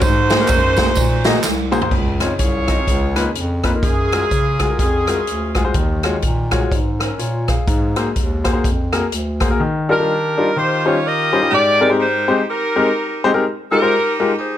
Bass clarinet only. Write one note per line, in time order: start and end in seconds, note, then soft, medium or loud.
0.02 0.42 G#2 loud
0.49 0.90 F#2 loud
0.96 1.37 A#2 loud
1.43 1.84 C2 medium
1.91 2.27 C#2 medium
2.39 2.80 C2 medium
2.88 3.28 C#2 loud
3.34 3.75 F2 medium
3.83 4.24 F#2 medium
4.31 4.72 C#3 medium
4.79 5.20 F2 medium
5.27 5.68 D2 medium
5.75 6.16 D#2 medium
6.23 6.64 A#2 medium
6.71 7.12 G#2 medium
7.19 7.60 A#2 medium
7.67 8.08 G#2 medium
8.16 8.56 D#2 medium
8.64 9.05 F2 medium
9.11 9.52 D2 medium